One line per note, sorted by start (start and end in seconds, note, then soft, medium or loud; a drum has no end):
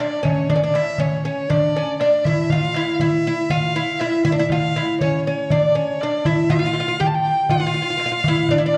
0.00 0.22 D4 medium
0.00 0.25 D5 medium
0.00 darbuka tek medium
0.23 0.49 C#4 medium
0.23 0.52 C#5 medium
0.23 darbuka dum medium
0.49 0.55 D4 medium
0.49 0.63 D5 medium
0.49 darbuka dum medium
0.56 0.62 C#4 medium
0.62 0.75 D4 medium
0.62 0.77 D5 medium
0.62 darbuka ka soft
0.74 0.99 E4 medium
0.74 1.02 E5 medium
0.74 darbuka tek medium
0.98 1.24 C#4 medium
0.98 1.25 C#5 medium
0.98 darbuka dum medium
1.25 1.49 C#4 medium
1.25 1.51 C#5 medium
1.50 1.76 D4 medium
1.50 1.98 D5 medium
1.50 darbuka dum medium
1.62 darbuka ka soft
1.76 2.00 C#4 medium
1.76 darbuka ka soft
1.99 2.26 D4 medium
1.99 2.26 D5 medium
1.99 darbuka tek medium
2.25 2.52 E4 medium
2.25 2.52 E5 medium
2.25 darbuka dum medium
2.50 2.76 F4 medium
2.50 2.94 F5 medium
2.50 darbuka dum medium
2.62 darbuka ka soft
2.74 3.00 E4 medium
2.74 darbuka tek medium
2.94 3.02 F5 medium
3.00 3.26 E4 medium
3.00 3.52 E5 medium
3.00 darbuka dum medium
3.27 3.50 E4 medium
3.50 3.76 F4 loud
3.50 4.01 F5 medium
3.50 darbuka dum medium
3.62 darbuka ka soft
3.75 4.00 E4 medium
3.75 darbuka ka soft
3.99 4.24 E4 medium
3.99 4.25 E5 medium
3.99 darbuka tek medium
4.25 4.31 E4 loud
4.25 4.37 E5 medium
4.25 darbuka dum medium
4.32 4.38 D4 medium
4.38 4.50 E4 medium
4.38 4.50 E5 medium
4.50 4.76 F4 medium
4.50 4.97 F5 medium
4.50 darbuka dum medium
4.63 darbuka ka soft
4.76 5.01 E4 medium
4.76 darbuka tek medium
5.01 5.26 C#4 medium
5.01 5.24 C#5 medium
5.01 darbuka dum medium
5.26 5.51 C#4 medium
5.26 5.53 C#5 medium
5.50 5.75 D4 medium
5.50 5.77 D5 medium
5.50 darbuka dum medium
5.63 darbuka ka soft
5.75 6.01 C#4 medium
5.75 6.02 C#5 medium
6.01 6.25 D4 medium
6.01 6.28 D5 medium
6.01 darbuka tek medium
6.13 darbuka ka soft
6.25 6.50 E4 medium
6.25 6.53 E5 medium
6.25 darbuka dum medium
6.50 6.57 F4 medium
6.50 7.02 F5 medium
6.50 darbuka dum loud
6.59 6.65 F4 medium
6.66 6.72 F4 medium
6.73 6.79 F4 medium
6.73 darbuka tek medium
6.80 6.87 F4 medium
6.88 6.95 F4 medium
7.00 7.50 G4 medium
7.00 7.08 G5 medium
7.00 darbuka dum medium
7.07 7.16 A5 medium
7.15 7.52 G5 medium
7.37 darbuka ka soft
7.49 7.58 F4 medium
7.49 8.53 F5 medium
7.49 darbuka dum medium
7.60 7.65 F4 medium
7.60 darbuka ka soft
7.67 7.73 F4 medium
7.74 7.81 F4 medium
7.74 darbuka ka soft
7.82 7.89 F4 medium
7.90 7.96 F4 medium
7.97 8.04 F4 medium
7.97 darbuka tek medium
8.06 8.10 F4 medium
8.12 8.18 F4 medium
8.24 8.52 E4 medium
8.24 darbuka dum medium
8.49 8.58 D4 medium
8.49 8.65 D5 medium
8.49 darbuka dum medium
8.58 8.65 E4 medium
8.58 darbuka ka soft
8.65 8.78 D4 medium
8.65 8.78 D5 medium
8.74 darbuka tek medium